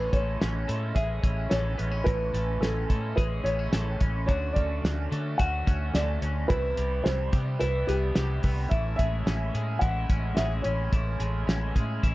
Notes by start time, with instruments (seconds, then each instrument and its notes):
Already playing: overdriven electric guitar A2 E3 G#3 C#4, clean electric guitar A3 C#4 G#4, upright piano B4
0.11 fingered electric bass A1, overdriven electric guitar G#3 C#4 E4, clean electric guitar A3, upright piano C#5, kick, closed hi-hat
0.40 fingered electric bass A1, overdriven electric guitar A2 E3 G#3 C#4 E4, snare, closed hi-hat
0.67 fingered electric bass A2, overdriven electric guitar G#3 C#4 E4, clean electric guitar A3, closed hi-hat
0.94 fingered electric bass A1, overdriven electric guitar E3 G#3 C#4 E4, clean electric guitar G#4, upright piano E5, kick, closed hi-hat
1.22 fingered electric bass A1, overdriven electric guitar G#3 C#4 E4, kick, closed hi-hat
1.49 fingered electric bass A1, overdriven electric guitar A2 E3 G#3 C#4 E4, clean electric guitar A3, upright piano C#5, snare, closed hi-hat
1.77 fingered electric bass A1, overdriven electric guitar G#3 C#4 E4, clean electric guitar B3, closed hi-hat
1.92 clean electric guitar C#4
2.04 fingered electric bass A1, overdriven electric guitar A2 E3 G#3 C#4 E4, upright piano B4, kick, closed hi-hat
2.32 fingered electric bass A1, overdriven electric guitar G#3 C#4 E4, clean electric guitar A3, closed hi-hat
2.61 fingered electric bass A1, overdriven electric guitar A2 E3 G#3 C#4 E4, upright piano A4, snare, closed hi-hat
2.87 fingered electric bass A2, overdriven electric guitar G#3 C#4 E4, clean electric guitar A3, kick, closed hi-hat
3.16 fingered electric bass A1, overdriven electric guitar E3 G#3 C#4 E4, clean electric guitar G#4, upright piano B4, kick, closed hi-hat
3.44 fingered electric bass A1, overdriven electric guitar G#3 C#4 E4, clean electric guitar B3, upright piano C#5, closed hi-hat
3.59 clean electric guitar C#4
3.72 fingered electric bass A1, overdriven electric guitar A2 E3 G#3 C#4 E4, clean electric guitar A3, snare, closed hi-hat
4.00 fingered electric bass A1, overdriven electric guitar G#3 C#4 E4, kick, closed hi-hat
4.26 fingered electric bass D2, overdriven electric guitar D3 A3 C#4 F#4, upright piano C#5, kick, closed hi-hat
4.53 fingered electric bass D2, overdriven electric guitar F#4, upright piano D5, kick, closed hi-hat
4.57 overdriven electric guitar A3 C#4
4.84 fingered electric bass D2, overdriven electric guitar D3 A3 C#4 F#4, snare, closed hi-hat
5.12 fingered electric bass D3, overdriven electric guitar A3 C#4 F#4, closed hi-hat
5.38 fingered electric bass D2, overdriven electric guitar D3 A3 C#4 F#4, upright piano F#5, kick, closed hi-hat
5.67 fingered electric bass D2, overdriven electric guitar A3 C#4 F#4, kick, closed hi-hat
5.94 fingered electric bass D2, overdriven electric guitar D3 A3 C#4 F#4, upright piano D5, snare, closed hi-hat
6.22 fingered electric bass D2, overdriven electric guitar A3 C#4 F#4, closed hi-hat
6.48 fingered electric bass C2, overdriven electric guitar C3 E3 G3 B3 E4, upright piano B4, kick, closed hi-hat
6.77 fingered electric bass C2, overdriven electric guitar G3 B3 E4, closed hi-hat
7.04 fingered electric bass C2, overdriven electric guitar C3 E3 G3 B3 E4, upright piano C5, snare, closed hi-hat
7.33 fingered electric bass C3, overdriven electric guitar G3 B3 E4, kick, closed hi-hat
7.60 fingered electric bass C2, overdriven electric guitar E3 G3 B3 E4, upright piano B4, closed hi-hat
7.87 fingered electric bass C2, overdriven electric guitar G3 B3 E4, upright piano G4, closed hi-hat
8.15 fingered electric bass C2, overdriven electric guitar C3 E3 G3 B3 E4, snare, closed hi-hat
8.43 fingered electric bass C2, overdriven electric guitar G3 B3 E4, kick, open hi-hat
8.69 fingered electric bass A1, overdriven electric guitar A2 E3 G#3 C#4 E4, upright piano E5, kick, closed hi-hat
8.96 fingered electric bass A1, overdriven electric guitar C#4 E4, upright piano E5, kick, closed hi-hat
9.01 overdriven electric guitar G#3
9.26 fingered electric bass A1, overdriven electric guitar A2 E3 G#3 C#4 E4, snare, closed hi-hat
9.54 fingered electric bass A2, overdriven electric guitar G#3 C#4 E4, closed hi-hat
9.79 fingered electric bass A1, overdriven electric guitar E3 G#3 C#4, upright piano F#5, kick, closed hi-hat
9.84 overdriven electric guitar E4
10.09 fingered electric bass A1, overdriven electric guitar G#3 C#4 E4, kick, closed hi-hat
10.35 fingered electric bass A1, overdriven electric guitar A2 E3 G#3 C#4 E4, upright piano E5, snare, closed hi-hat
10.62 fingered electric bass A1, overdriven electric guitar E4, upright piano C#5, closed hi-hat
10.67 overdriven electric guitar G#3 C#4
10.93 fingered electric bass A1, overdriven electric guitar A2 E3 G#3 C#4 E4, kick, closed hi-hat
11.20 fingered electric bass A1, overdriven electric guitar G#3 C#4 E4, closed hi-hat
11.47 fingered electric bass A1, overdriven electric guitar A2 E3 G#3 C#4 E4, snare, closed hi-hat
11.74 fingered electric bass A2, overdriven electric guitar G#3 C#4 E4, kick, closed hi-hat
12.03 fingered electric bass A1, overdriven electric guitar E3 G#3 C#4 E4, kick, closed hi-hat